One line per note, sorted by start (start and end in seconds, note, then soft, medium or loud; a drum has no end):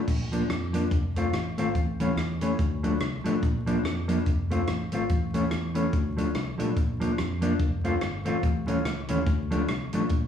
0.08 0.43 A#1 loud
0.08 kick loud
0.08 crash loud
0.32 0.42 F3 medium
0.32 0.42 A#3 medium
0.32 0.42 D4 medium
0.32 closed hi-hat loud
0.49 0.85 F2 loud
0.49 cross-stick loud
0.49 closed hi-hat medium
0.73 0.83 F3 medium
0.73 0.84 A#3 medium
0.73 0.84 D4 medium
0.73 closed hi-hat loud
0.91 1.27 F1 loud
0.91 kick loud
0.91 closed hi-hat medium
1.16 1.26 A3 medium
1.16 1.26 C4 medium
1.16 1.26 F4 medium
1.16 closed hi-hat medium
1.33 1.54 A1 medium
1.33 cross-stick loud
1.33 closed hi-hat medium
1.57 1.73 G#1 medium
1.57 1.67 A3 medium
1.57 1.68 C4 medium
1.57 1.68 F4 medium
1.57 closed hi-hat medium
1.75 2.11 A1 loud
1.75 kick loud
1.75 closed hi-hat medium
2.00 2.09 E3 medium
2.00 2.10 A3 medium
2.00 2.10 C#4 loud
2.00 closed hi-hat loud
2.16 2.52 E2 loud
2.16 cross-stick loud
2.16 closed hi-hat medium
2.41 2.51 E3 medium
2.41 2.51 A3 medium
2.41 2.51 C#4 loud
2.41 closed hi-hat loud
2.59 2.95 D2 loud
2.59 kick loud
2.59 closed hi-hat medium
2.83 2.93 F3 medium
2.83 2.93 A3 medium
2.83 2.93 D4 medium
2.83 closed hi-hat medium
3.00 3.22 C2 medium
3.00 cross-stick loud
3.00 closed hi-hat medium
3.24 3.40 A1 medium
3.24 3.34 F3 medium
3.24 3.35 A3 medium
3.24 3.35 D4 loud
3.24 closed hi-hat loud
3.43 3.78 A#1 loud
3.43 kick loud
3.43 closed hi-hat medium
3.66 3.76 F3 medium
3.66 3.76 A#3 medium
3.66 3.77 D4 loud
3.66 closed hi-hat loud
3.83 4.20 F2 loud
3.83 cross-stick loud
3.83 closed hi-hat medium
4.08 4.18 F3 medium
4.08 4.18 A#3 medium
4.08 4.18 D4 medium
4.08 closed hi-hat loud
4.26 4.62 F1 loud
4.26 kick loud
4.26 closed hi-hat medium
4.50 4.60 A3 medium
4.50 4.60 C4 medium
4.50 4.61 F4 medium
4.50 closed hi-hat medium
4.67 4.89 A1 medium
4.67 cross-stick loud
4.67 closed hi-hat medium
4.92 5.07 G#1 medium
4.92 5.02 A3 medium
4.92 5.02 C4 medium
4.92 5.03 F4 medium
4.92 closed hi-hat medium
5.09 5.46 A1 loud
5.09 kick loud
5.09 closed hi-hat medium
5.34 5.43 E3 medium
5.34 5.44 A3 medium
5.34 5.44 C#4 medium
5.34 closed hi-hat medium
5.51 5.87 E2 loud
5.51 cross-stick loud
5.51 closed hi-hat medium
5.75 5.85 E3 medium
5.75 5.85 A3 loud
5.75 5.85 C#4 loud
5.75 closed hi-hat loud
5.93 6.29 D2 loud
5.93 kick loud
5.93 closed hi-hat medium
6.17 6.27 F3 medium
6.17 6.27 A3 medium
6.17 6.27 D4 medium
6.17 closed hi-hat medium
6.34 6.56 C2 medium
6.34 cross-stick loud
6.34 closed hi-hat medium
6.58 6.74 A#1 medium
6.58 6.68 F3 medium
6.58 6.69 A3 medium
6.58 6.69 D4 medium
6.58 closed hi-hat loud
6.77 7.12 A#1 loud
6.77 kick loud
6.77 closed hi-hat medium
7.00 7.10 F3 medium
7.00 7.10 A#3 medium
7.00 7.11 D4 medium
7.00 closed hi-hat medium
7.18 7.54 F2 medium
7.18 cross-stick loud
7.18 closed hi-hat medium
7.41 7.52 F3 medium
7.41 7.52 A#3 loud
7.41 7.52 D4 loud
7.41 closed hi-hat loud
7.59 7.95 F1 loud
7.59 kick loud
7.59 closed hi-hat medium
7.84 7.94 A3 medium
7.84 7.94 C4 medium
7.84 7.94 F4 loud
7.84 closed hi-hat medium
8.01 8.22 G1 medium
8.01 cross-stick loud
8.01 closed hi-hat medium
8.25 8.41 A1 loud
8.25 8.35 A3 medium
8.25 8.35 C4 medium
8.25 8.36 F4 loud
8.25 closed hi-hat medium
8.43 8.79 A1 loud
8.43 kick loud
8.43 closed hi-hat medium
8.67 8.77 E3 medium
8.67 8.77 A3 medium
8.67 8.77 C#4 medium
8.67 closed hi-hat medium
8.85 9.10 C#2 loud
8.85 cross-stick loud
8.85 closed hi-hat medium
9.08 9.25 D#2 loud
9.08 9.19 E3 medium
9.08 9.19 A3 medium
9.08 9.19 C#4 loud
9.08 closed hi-hat loud
9.26 9.62 D2 loud
9.26 kick loud
9.26 closed hi-hat medium
9.51 9.60 F3 medium
9.51 9.61 A3 medium
9.51 9.61 D4 medium
9.51 closed hi-hat medium
9.68 9.90 C2 medium
9.68 cross-stick loud
9.68 closed hi-hat medium
9.93 10.08 A1 medium
9.93 10.02 F3 medium
9.93 10.03 A3 loud
9.93 10.03 D4 loud
9.93 closed hi-hat loud
10.09 10.28 A#1 loud
10.09 kick loud
10.09 closed hi-hat medium